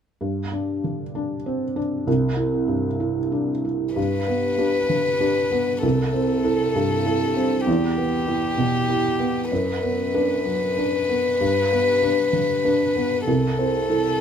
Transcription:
0.21 G2
0.52 D4
0.84 D3
1.15 D4
1.46 C4
1.76 D4
2.07 C2
2.37 E4
2.68 G2
3.00 E4
3.32 D4
3.64 E4
3.95 G2 B4
4.28 B3
4.58 D4 G4
4.89 D3
5.20 D4 G4
5.51 B3
5.83 C2 A4
6.14 C4
6.44 E4 A4
6.75 G2
7.06 E4 A4
7.37 C4
7.67 E2 G4
7.97 B3
8.27 E4 G4
8.58 B2
8.88 E4 G4
9.19 B3
9.51 F#2 B4
9.83 B3
10.14 D4 B4
10.45 F#3
10.77 D4 B4
11.09 B3
11.41 G2
11.72 B3
12.03 D4 B4
12.33 D3
12.65 D4 B4
12.96 B3
13.26 C2 A4
13.59 C4
13.90 E4 A4

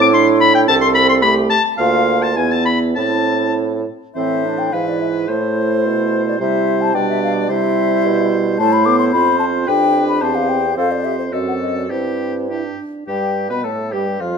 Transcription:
Already playing: A2 C4 E4
0.00 D6
0.13 D4 C6
0.41 B5
0.54 G5
0.67 C2 C4 A4 A5
0.81 C6
0.94 B5
1.09 C6
1.22 A3 G4 B5
1.50 A5
1.78 D2 A#3 F4 F5
2.21 A5
2.36 E2 B3 E4 G#5
2.51 A5
2.65 B5
2.96 A2 C4 E4 A5
4.15 A2 E3 C4 C5 E5
4.44 D4
4.58 G5
4.73 G#2 E3 E4 B4 F5
4.88 D5
5.01 E5
5.29 A2 A3 E4 C5
5.85 B2
6.27 D5
6.40 C3 G3 E4 C5 E5
6.81 A5
6.94 B2 G3 D4 D5 G5
7.09 E5
7.23 F5
7.37 D5
7.49 C3 G3 E4 C5 E5
8.05 B2
8.58 A2 A3 E4 C5 A5
8.73 B5
8.85 B3 D6
8.99 C6
9.12 F2 C4 F4 C5 B5
9.39 A5
9.67 F2 D4 G4 B4 G5
10.08 B5
10.21 E2 C4 G4 C5 A5
10.35 F5
10.49 G5
10.76 F2 C4 A4 C5 F5
10.91 D5
11.04 G4 E5
11.18 C5
11.32 F#2 C4 F#4 A4 D#5
11.48 F#5
11.61 D#5
11.77 D5
11.90 G2 C4 E4 G4 C5
12.49 D4 E4 G4
12.79 D4
13.07 G2 G3 G4 G5
13.50 B2 B3 B4 B5
13.64 A2 A3 A4 A5
13.92 G2 G3 G4 G5
14.20 F2 F3 F4 F5

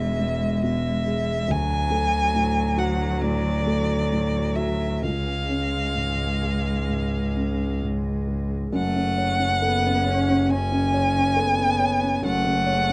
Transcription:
Already playing: E1 E2 B2 G#3 G#4 E5
0.20 G#3
0.63 B2 E5
1.06 G#4
1.48 D2 F#3 G#5
1.90 A3
2.34 A2
2.77 F#4 F#5
3.22 A2 D5
3.66 A3
4.12 A2
4.56 F#4 E5
5.02 C#2 G#3 F5
5.49 C#4
5.95 G#2
6.43 G#4
6.89 G#2
7.36 C#4
7.82 G#2
8.28 G#4
8.73 F#1 F#2 A3 F#5
8.96 C#4
9.18 C#5
9.39 C#4
9.62 B3 A4
9.84 C#4
10.05 C#4 C#5
10.28 C#4
10.49 C#3 C#4 G#5
10.72 C#4
10.94 C#5
11.16 C#4
11.36 B3 A4
11.58 C#4
11.79 C#5
12.01 C#4
12.23 F#1 F#2 A3 F#5
12.45 C#3
12.66 C#5
12.89 C#4

